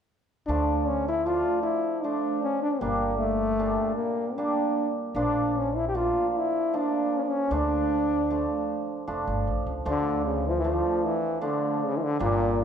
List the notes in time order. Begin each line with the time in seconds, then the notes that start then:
0.47 D2 F3 A3 D4
0.87 C#4
1.08 E4
1.26 F3 A3 D4 F4
1.63 E4
2.03 F3 A3 D4
2.43 C#4
2.62 D4
2.73 C#4
2.80 G1 G3 A#3 D4
3.18 A3
3.59 A#2 G3 D4
3.96 A#3
4.37 G3 A#3 D4
5.15 A#1 F3 A#3 D4
5.57 C#4
5.76 E4
5.88 G4
5.94 F3 A#3 D4 F4
6.30 F4
6.38 E4
6.73 F3 A#3 D4
7.17 C#4
7.23 D4
7.29 C#4
7.51 D2 F3 A3 D4
8.30 F3 A3 D4
9.07 F1 F3 A3 D4
9.27 G1
9.47 A1
9.67 C#2
9.85 D2 F3 A3 D4
9.90 D3
10.26 C#3
10.47 E3 F3
10.58 E3
10.64 F3 A3 D4
11.04 E3
11.41 D3 F3 A3 D4
11.85 C#3
11.97 E3
12.04 D3
12.19 G1 A#2 G3 A#3 D4